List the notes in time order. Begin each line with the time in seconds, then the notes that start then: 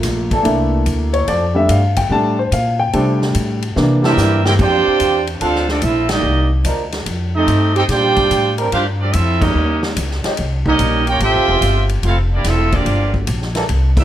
Already playing: A3 A#3 F4
0.03 A#1, snare, hi-hat pedal, ride
0.31 E3 D4 A4, kick, ride
0.43 C2 A3 A#3 D4 E4, ride
0.86 D2, hi-hat pedal, ride
1.13 C#5, ride
1.27 F2 F3 C4 D4 A4 D5, ride
1.54 G3 A3 D4 E5
1.69 G2 F5, hi-hat pedal, ride
1.96 G5, kick, ride
2.10 A2 G3 A3 D4 A5
2.39 C5
2.52 A#2 F5, hi-hat pedal, ride
2.79 G5
2.93 C3 F3 G3 A3 C4 D4 A4, ride
3.22 snare
3.35 A2, hi-hat pedal, ride
3.62 ride
3.76 C3 E3 A#3 D4, snare
4.02 G3 A#3 C4 E4 G4 A4 E5, snare
4.07 A#4
4.17 G2, snare, hi-hat pedal
4.45 A#3 E4 G4 A#4 C5 G5, snare
4.59 F2 C4 D4 F4 G4 C5 D5 G5, kick, crash
4.87 muted upright bass stroke
5.00 E2, hi-hat pedal, ride
5.27 ride
5.41 D2 F3 C4 D4 F4 A4 C5 F5, ride
5.55 snare
5.68 D3 A3 C4 D4 F4 A4 D5, snare
5.82 A#1 C4 E4 F4 A4 E5, hi-hat pedal, ride
6.09 G3 A#3 D#4 G4 D5 D#5, snare, ride
6.23 C2
6.64 D2 F3 D4 D#4 A#4, hi-hat pedal, ride
6.92 snare, ride
7.06 F2, ride
7.35 A3 C4 D#4 G4 A4 D#5
7.47 G2, hi-hat pedal, ride
7.76 C4 D#4 G4 A4 C5 G5, ride
7.88 A#2 G3 D4 F4 G4 C5 D5 G5, snare, ride
8.16 kick, ride
8.30 A2, hi-hat pedal, ride
8.58 G3 C4 D4 A#4, ride
8.72 G2 G3 D4 F4 G4 C5 F5, ride
9.00 F3 G3 C4 D4 F4 G4 D5
9.13 F2 C4 E4 F4 A4 E5, hi-hat pedal, ride
9.42 G3 A#3 C#4 D#4 G4 A#4 D#5, kick, crash
9.55 D#2
9.83 snare
9.96 C#2, hi-hat pedal, ride
10.11 snare
10.24 F3 C#4 D#4 G4, muted upright bass stroke, snare, ride
10.37 C2, ride
10.66 G3 A#3 C#4 D#4 G4 A#4 D#5, kick
10.79 A#1, hi-hat pedal, ride
11.07 A#3 C#4 F4 G4 A#4 C#5 G5, ride
11.20 A1 F3 C4 F4 G4 A4 C5 E5 G5, ride
11.34 F1
11.48 E1
11.61 G1, hi-hat pedal, ride
11.89 ride
12.03 F1 A3 C4 E4 F4, ride
12.07 A4 F5
12.32 A#3 D4 E4 G4 D5
12.44 E1 A3 C4 E4, snare, hi-hat pedal, ride
12.49 C4 F4 A4 E5
12.72 F3 A#3 D4 F4 G4 D5, kick, ride
12.86 G1, ride
13.14 kick
13.27 A#1, hi-hat pedal, ride
13.42 snare
13.55 E3 A#3 D4 A4, snare, ride
13.69 C2, ride
13.97 G3 A#3 D4 E4 G4 A#4 E5, kick, crash